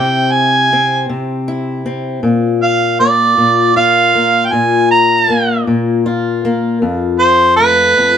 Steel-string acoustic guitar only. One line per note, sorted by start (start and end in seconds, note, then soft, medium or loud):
0.00 1.08 C3 medium
0.00 0.71 C4 medium
0.00 1.47 E4 medium
0.73 1.84 C4 medium
1.09 2.19 C3 medium
1.48 2.20 E4 medium
1.86 2.19 C4 medium
2.23 3.36 A#2 medium
3.00 4.14 A#3 medium
3.38 4.51 A#2 medium
3.76 6.05 F4 medium
4.15 5.28 A#3 medium
4.53 5.66 A#2 medium
5.30 6.44 A#3 medium
5.67 6.82 A#2 medium
6.06 8.18 F4 medium
6.45 6.78 A#3 medium
6.82 7.97 F2 medium
7.60 8.18 A3 medium
7.97 8.18 F2 medium